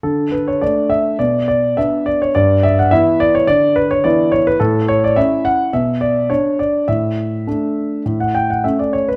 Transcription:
<<
  \new Staff \with { instrumentName = "Grand piano" } { \time 4/4 \key d \major \tempo 4 = 104 a'8 b'16 cis''16 d''8 e''8 d''8 d''8 e''8 d''16 cis''16 | d''8 e''16 fis''16 e''8 d''16 cis''16 d''8 b'16 cis''16 d''8 cis''16 b'16 | a'8 cis''16 d''16 e''8 fis''8 e''8 d''8 cis''8 d''8 | e''2~ e''16 fis''16 g''16 fis''16 e''16 d''16 cis''16 b'16 | }
  \new Staff \with { instrumentName = "Grand piano" } { \time 4/4 \key d \major d4 <a d'>4 b,4 <b d'>4 | g,4 <e b e'>4 d4 <e b e'>4 | a,4 <cis' e'>4 b,4 d'4 | a,4 <a d'>4 a,4 <a cis'>4 | }
>>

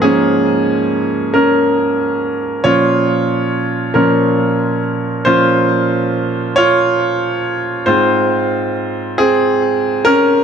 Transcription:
<<
  \new Staff \with { instrumentName = "Grand piano" } { \time 6/8 \key bes \dorian \tempo 4. = 46 <des' aes'>4 r8 <des' bes'>4 r8 | <f' des''>4. bes'4 r8 | <f' c''>4 r8 <f' des''>4 r8 | <f' c''>4 r8 <c' aes'>4 <des' bes'>8 | }
  \new Staff \with { instrumentName = "Grand piano" } { \clef bass \time 6/8 \key bes \dorian <aes, f bes>2. | <bes, f des'>8 r4 <bes, f des'>8 r4 | <bes, f des'>2. | <aes, aes c'>8 r2 r8 | }
>>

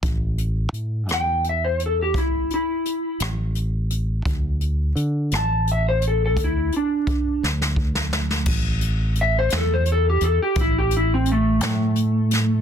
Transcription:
<<
  \new Staff \with { instrumentName = "Electric slide guitar" } { \time 12/8 \key d \major \tempo 4. = 57 r4. g''8 e''16 c''16 a'16 g'16 e'8 e'4 r4. | r4. a''8 e''16 c''16 a'16 a'16 e'8 d'4 r4. | r4 e''16 c''16 a'16 c''16 a'16 g'16 a'16 g'16 e'16 g'16 e'16 c'16 a2 | }
  \new Staff \with { instrumentName = "Fingered electric bass" } { \clef bass \time 12/8 \key d \major a,,4 a,8 e,4. a,,8 r4 a,,4. | d,4 d8 a,,4. d,8 r4 d,4. | a,,4. e,4 e,16 r16 a,,4. a,4. | }
  \new DrumStaff \with { instrumentName = "Drums" } \drummode { \time 12/8 <hh bd>8 hh8 hh8 <hh ss>8 hh8 hh8 <hh bd>8 hh8 hh8 <hh ss>8 hh8 hh8 | <hh bd>8 hh8 hh8 <hh ss>8 hh8 hh8 <hh bd>8 hh8 <hh bd>8 sn16 sn16 bd16 sn16 sn16 sn16 | <cymc bd>8 hh8 hh8 <hh sn>8 hh8 hh8 <hh bd>8 hh8 hh8 <hh sn>8 hh8 <hh sn>8 | }
>>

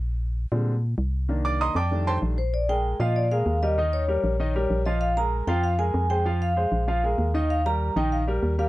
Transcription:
<<
  \new Staff \with { instrumentName = "Vibraphone" } { \time 4/4 \key bes \mixolydian \tempo 4 = 193 r1 | r2. r8 c''8 | d''8 g''4 ees''8 d''8 f''4 ees''8~ | ees''8 des''2. ees''8 |
f''8 bes''4 g''8 f''8 aes''4 g''8~ | g''8 f''2. ees''8 | f''8 bes''4 g''8 f''8 r4 f''8 | }
  \new Staff \with { instrumentName = "Grand piano" } { \time 4/4 \key bes \mixolydian r1 | r8 <d'' d'''>8 <ees'' bes'' c''' ees'''>8 <d'' g'' a'' d'''>4 <c'' g'' a'' c'''>8 r4 | r8 <aes aes' bes'>4 <f f' f''>4 <aes aes' bes'>4 <g g' bes'>8 | <ees ees' ees''>4 <g g' bes'>4 <ees ees' ees''>8 <g g' bes'>4 <f f' f''>8~ |
<f f' f''>8 <aes aes' bes'>4 <f f' f''>4 <aes aes' bes'>4 <aes aes' c''>8 | <f f' f''>4 <aes aes' c''>4 <f f' f''>8 <aes aes' bes'>4 <ees ees' ees''>8~ | <ees ees' ees''>8 <g g' bes'>4 <ees ees' ees''>4 <g g' bes'>4 <g g' bes'>8 | }
  \new Staff \with { instrumentName = "Grand piano" } { \clef bass \time 4/4 \key bes \mixolydian r4. <d g aes c'>8 r2 | <ees bes d'>4. r8 <ees g a d'>4. r8 | r1 | r1 |
r1 | r1 | r1 | }
  \new Staff \with { instrumentName = "FM bass" } { \clef bass \time 4/4 \key bes \mixolydian bes,,4. bes,4. c,4~ | c,4. f,4. bes,,4~ | bes,,4. bes,4. ees,4~ | ees,4. bes,,4. bes,,4~ |
bes,,4. f,4. f,4~ | f,4. bes,,4. ees,4~ | ees,4. bes,,4. ees,4 | }
>>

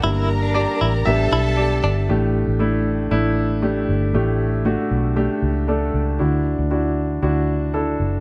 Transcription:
<<
  \new Staff \with { instrumentName = "Violin section" } { \time 4/4 \key a \mixolydian \tempo 4 = 117 <bes' bes''>2 <a' a''>2 | r1 | r1 | r1 | }
  \new Staff \with { instrumentName = "Clean electric guitar" } { \time 4/4 \key a \mixolydian e'8 r16 d'16 d'8 e'16 r8. e'16 r8. d'16 r16 | r1 | r1 | r1 | }
  \new Staff \with { instrumentName = "Upright piano" } { \time 4/4 \key a \mixolydian r4 <g' d''>4 <g' e''>4 <g' d''>8. r16 | <a d' g'>4 <a d' e'>4 <a d' e'>4 <a d' g'>4 | <a d' g'>4 <a d' fis'>4 <a d' g'>4 <a d' a' d''>4 | <d' e' fis'>4 <d' e' fis'>4 <d' e' fis'>4 <d' e' a'>4 | }
  \new Staff \with { instrumentName = "Upright piano" } { \clef bass \time 4/4 \key a \mixolydian <g bes d'>8 r4. <g b d'>8 r4. | a,4. r2 r8 | a,4. r2 r8 | d4. r2 r8 | }
  \new Staff \with { instrumentName = "Fingered electric bass" } { \clef bass \time 4/4 \key a \mixolydian g,,4~ g,,16 r16 a,,8 a,,8 b,,4 g,,8 | a,,8. a,,4~ a,,16 a,,4. g,,8 | a,,4~ a,,16 r16 b,,8. r16 cis,4 cis,8 | d,8. d,4~ d,16 d,4. fis,,8 | }
>>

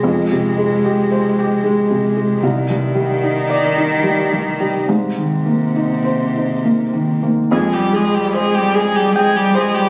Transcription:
<<
  \new Staff \with { instrumentName = "Viola" } { \time 3/4 \key f \minor \tempo 4 = 74 r2. | r2. | r2. | aes'16 g'16 aes'16 g'16 aes'16 g'16 aes'16 g'16 aes'16 g'16 aes'16 g'16 | }
  \new Staff \with { instrumentName = "Felt piano" } { \clef bass \time 3/4 \key f \minor \tuplet 3/2 { <f, aes>8 c8 aes8 g'8 c''8 g'8 aes8 c8 aes8 } | \tuplet 3/2 { c,8 g,8 g8 ees'8 d''8 ees'8 g8 g,8 g8 } | \tuplet 3/2 { aes,8 ees8 bes8 ees'8 c''8 ees'8 bes8 ees8 bes8 } | f,8 aes8 c''8 aes'8 g''8 c''8 | }
  \new Staff \with { instrumentName = "Cello" } { \clef bass \time 3/4 \key f \minor aes2. | ees2. | c2~ c8. r16 | aes16 g16 aes16 g16 aes16 g16 aes16 g16 aes16 g16 aes16 g16 | }
>>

